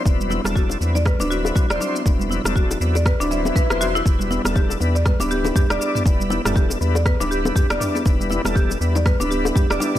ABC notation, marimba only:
X:1
M:4/4
L:1/16
Q:"Swing 16ths" 1/4=120
K:Em
V:1 name="Marimba"
z2 E z F z2 d B D F z F d D B, | z2 E z F z2 d B D e z B B F E | z2 E z G z2 d B D G z G d D B, | z2 E z G z2 d B D G z G d D B, |
z2 E z G z2 d B D G z G d D B, |]